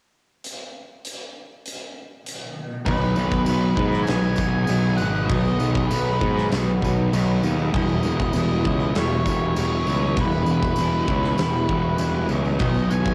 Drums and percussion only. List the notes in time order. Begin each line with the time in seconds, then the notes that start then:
0.44 closed hi-hat
1.05 closed hi-hat
1.66 closed hi-hat
2.27 closed hi-hat
2.86 kick, crash
3.02 tambourine
3.16 tambourine
3.31 kick, tambourine
3.46 tambourine, crash
3.77 kick
3.92 snare, tambourine
4.07 snare, tambourine, crash
4.23 tambourine
4.36 kick, tambourine
4.67 tambourine, crash
4.98 tambourine
5.14 tambourine
5.29 kick, crash
5.45 tambourine
5.60 tambourine
5.75 kick, tambourine
5.91 tambourine, crash
6.21 kick
6.37 snare, tambourine
6.51 snare, tambourine, crash
6.69 tambourine
6.82 kick, tambourine
7.13 tambourine, crash
7.43 tambourine
7.59 tambourine
7.74 kick, crash
7.88 tambourine
8.03 tambourine
8.20 kick, tambourine
8.33 tambourine, crash
8.65 kick
8.80 tambourine
8.95 snare, tambourine, crash
9.10 tambourine
9.26 kick, tambourine
9.56 tambourine, crash
9.87 tambourine
10.16 kick, tambourine, crash
10.32 tambourine
10.46 tambourine
10.63 kick, tambourine
10.76 tambourine, crash
11.07 kick, tambourine
11.23 snare, tambourine
11.38 snare, tambourine, crash
11.54 tambourine
11.69 kick
11.98 tambourine, crash
12.29 tambourine
12.44 tambourine
12.59 kick, crash
12.74 tambourine
12.91 tambourine
13.06 kick, tambourine